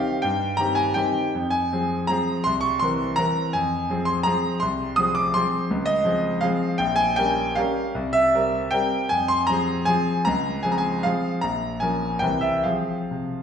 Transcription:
Already playing: D#3 C4 G4 F5
0.22 G2 G5
0.57 D#3 C4 G4 A#5
0.75 G#5
0.94 D#3 C4 G4 G5
1.35 F2
1.50 G#5
1.73 F3 C4 G#4
2.07 F3 C4 G#4 A#5
2.44 C2 C6
2.61 C#6
2.79 E3 C4 A#4 C6
3.16 E3 C4 A#4 A#5
3.53 F2 G#5
3.90 F3 C4 G#4
4.05 C6
4.23 F3 C4 G#4 A#5
4.60 C2 C6
4.96 F3 C4 G#4 D#6
5.15 D6
5.34 F3 C4 G#4 C6
5.71 C#2
5.86 D#5
6.05 F3 C4 G#4
6.41 F3 C4 G#4 F5
6.78 A#1 G5
6.96 G#5
7.16 G3 C#4 A#4 G5
7.55 G3 C#4 A#4 F5
7.95 C2
8.13 E5
8.34 G3 C4 A#4
8.71 G3 C4 A#4 G5
9.09 F2 G#5
9.28 C6
9.47 F3 C4 G#4 A#5
9.85 F3 C4 G#4 G#5
10.25 C#2 A#5
10.63 F3 C4 G#4 G#5
10.72 A#5
10.78 G#5
11.03 F3 C4 G#4 F5
11.41 A#1 A#5
11.80 F3 C#4 A#4 G#5
12.19 C2 E3 C4 A#4 G5
12.41 E5
12.64 F3 C4 G#4 F5
13.11 C3

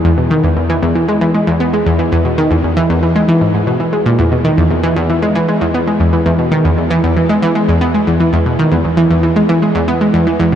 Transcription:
0.05 E2
0.18 B2
0.31 D#3
0.44 E2
0.57 E2
0.69 E3
0.82 E2
0.95 E3
1.08 G#3
1.21 E3
1.34 G#3
1.47 E2
1.60 B3
1.73 G#3
1.86 E2
1.99 E3
2.12 E2
2.25 B2
2.38 D#3
2.51 E2
2.64 E2
2.77 E3
2.90 E2
3.03 E3
3.15 G#3
3.28 E3
3.41 G#2
3.54 G#2
3.67 B2
3.80 E3
3.93 G#3
4.06 A#2
4.19 E2
4.32 B2
4.45 D#3
4.57 E2
4.71 E2
4.83 E3
4.96 E2
5.09 E3
5.22 G#3
5.35 E3
5.48 G#3
5.61 E2
5.74 B3
5.87 G#3
6.00 E2
6.13 E3
6.26 E2
6.39 B2
6.51 D#3
6.65 E2
6.77 E2
6.90 E3
7.04 E2
7.17 E3
7.29 G#3
7.42 E3
7.55 G#3
7.68 E2
7.81 B3
7.94 G#3
8.07 E2
8.20 E3
8.33 E2
8.46 B2
8.59 D#3
8.71 E2
8.84 E2
8.97 E3
9.10 E2
9.23 E3
9.36 G#3
9.49 E3
9.62 G#3
9.75 E2
9.88 B3
10.01 G#3
10.14 E2
10.27 E3
10.40 E2

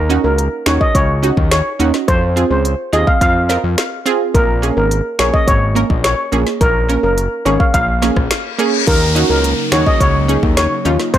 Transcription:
Already playing: D#2
0.09 C#4 D#4 F#4, closed hi-hat
0.24 C#2 A#4
0.38 closed hi-hat
0.66 D#2 C#4 D#4 F#4 C#5, finger snap, snare, closed hi-hat
0.81 D#5, kick
0.95 C#2 C#5, kick, closed hi-hat
1.23 C#4 D#4 F#4, closed hi-hat
1.37 D#2, kick
1.51 C#5, finger snap, snare, closed hi-hat
1.79 D#2 C#4 D#4 F#4, closed hi-hat
1.94 snare
2.08 F2 C5, kick, closed hi-hat
2.36 C4 F4 G#4, closed hi-hat
2.51 C#2 C5
2.65 closed hi-hat
2.93 D#2 C4 F4 G#4 D#5, closed hi-hat
3.07 F5, kick
3.21 F2 F5, kick, closed hi-hat
3.49 C4 F4 A#4, snare, closed hi-hat
3.64 F2
3.78 finger snap, snare, closed hi-hat
4.06 C4 F4 G#4, closed hi-hat
4.34 A#1 A#4, kick, closed hi-hat
4.62 A#3 C#4 G#4, closed hi-hat
4.77 G#1 A#4
4.91 closed hi-hat
5.19 A#1 A#3 C#4 G#4 C#5, finger snap, snare, closed hi-hat
5.34 D#5, kick
5.47 G#1 C#5, kick, closed hi-hat
5.75 A#3 C#4 A#4, closed hi-hat
5.90 A#1, kick
6.04 C#5, finger snap, snare, closed hi-hat
6.32 A#1 A#3 C#4 G#4, closed hi-hat
6.47 snare
6.61 A#1 A#4, kick, closed hi-hat
6.89 A#3 C#4 A#4, closed hi-hat
7.03 F#1 A#4
7.18 closed hi-hat
7.45 G#1 A#3 C#4 G#4 C#5, closed hi-hat
7.60 F5, kick
7.74 A#1 F5, kick, closed hi-hat, reverse cymbal
8.02 A#3 C#4 G#4, snare, closed hi-hat
8.16 A#1, kick, cross-stick
8.31 finger snap, snare, closed hi-hat
8.59 A#3 C#4 G#4, closed hi-hat
8.87 D#2 C#3 F#3 A#3 D#4 A#4, kick, closed hi-hat, crash, downlifter
9.15 C#4 D#4 F#4, closed hi-hat
9.30 C#2 A#4
9.44 closed hi-hat
9.72 D#2 C#4 D#4 F#4 C#5, finger snap, snare, closed hi-hat
9.87 D#5, kick
10.00 C#2 C#5, kick, closed hi-hat
10.28 C#4 D#4 G#4, closed hi-hat
10.43 D#2, kick
10.57 C#5, finger snap, snare, closed hi-hat
10.85 D#2 C#4 D#4 F4, closed hi-hat
10.99 snare
11.14 F2 C3 F3 G#3 F4 C5, kick, closed hi-hat

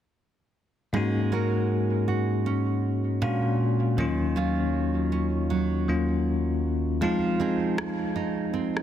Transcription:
0.93 G#2 G#3 A#3 C#4 D#4 F#4
1.32 C#4 F#4 A#4
2.08 F#4
2.46 C#4
3.22 A#2 G#3 C#4 D4 F#4
3.97 D#2 D#3 F#3 A#3 C#4 F4
4.36 F#3 C#4 F4
5.12 C#4
5.50 F#3
5.88 D#2 F#3 A#3 C#4 F4
7.01 F3 G#3 C4 D#4 F4
7.40 C4 D#4 G#4
7.78 cross-stick
8.16 D#4
8.54 C4
8.77 cross-stick

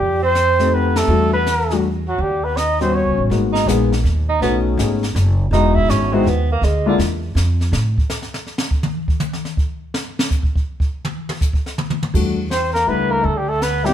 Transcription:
Already playing: F2 G3 G4
0.22 C4 C5
0.35 snare, hi-hat pedal
0.59 A3 C4 D#4 G4, snare
0.74 B3 B4
0.96 A3 A4, snare, ride
1.08 E2 G3 A3 D4 F#4, brush sweep
1.33 B3 B4
1.46 snare, hi-hat pedal
1.70 G3 A3 D4 F#4, snare
2.07 F#3 F#4
2.18 D#2 G3 G4, brush sweep
2.44 B3 B4
2.57 D#4 D#5, snare, hi-hat pedal
2.80 G3 B3 C4 C#4 F#4 C5, snare
2.92 C#4 C#5
3.04 C#2
3.17 A1
3.30 G#1 G#3 A#3 B3 D#4 F#4, brush sweep, snare
3.53 D#4, snare
3.66 A#1 G#3 A#3 B3 D#4 G#4, snare, hi-hat pedal
3.92 snare
4.04 D#2, snare
4.29 D#4
4.41 B1 A3 B3 C#4 D#4 F#4, brush sweep, snare
4.77 G#1 A3 B3 C#4 D#4 G#4, snare, hi-hat pedal
5.03 snare
5.15 F#1, snare, hi-hat pedal
5.51 E1 G#3 B3 D#4 E4 F#4, brush sweep, snare
5.74 E4, kick
5.88 G#1 C#4, snare, hi-hat pedal
6.13 G#3 B3 C4 D#4 E4 F#4
6.25 D#2 B3, snare
6.52 A#3
6.62 D2 G#3, brush sweep, snare
6.86 D3 G#3 A#3 D4 E4 F4
6.98 E2, snare, hi-hat pedal
7.35 F2, snare, hi-hat pedal
7.61 snare
7.72 A2, snare
7.98 kick
8.10 snare, hi-hat pedal
8.22 snare
8.34 snare
8.47 snare
8.58 snare
8.71 kick
8.83 mid tom
9.08 kick
9.20 hi-hat pedal, mid tom
9.33 snare
9.45 snare
9.57 kick
9.94 snare
10.19 snare
10.31 kick, hi-hat pedal
10.43 kick
10.56 kick
10.80 kick
11.05 mid tom
11.29 mid tom
11.41 kick, hi-hat pedal
11.53 kick
11.66 snare
11.78 mid tom
11.90 mid tom
12.03 mid tom
12.13 E2 G3 A3 D4 F#4, brush sweep, kick, crash
12.51 C4 C5, snare, hi-hat pedal
12.73 A#3 A#4, snare
12.86 C#2 G3 A3 B3 D4 E4 B4
13.10 A#3 A#4
13.24 D2 A3 A4, brush sweep
13.35 G3 G4
13.49 A3 A4
13.61 B3 B4, snare, hi-hat pedal
13.84 F#3 G3 B3 C4 E4 G4, snare

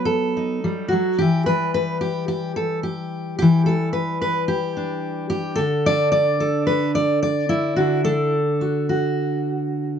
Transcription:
Already playing: F#3 B3
0.05 A4
0.37 D#4
0.64 G3
0.88 F#3 F#4
1.18 E3 G4
1.46 G3 B4
1.74 B4
2.01 G4
2.28 G4
2.56 A4
2.83 G4
3.39 E3 G4
3.66 G3 A4
3.93 B4
4.22 B4
4.48 G4
4.77 D4
5.30 G4
5.56 D3 A4
5.86 D4 D5
6.12 D5
6.40 A4
6.67 B4
6.95 D5
7.23 D5
7.49 E4
7.76 D3 F#4
8.04 D4 A4
8.61 F#4
8.89 F#4

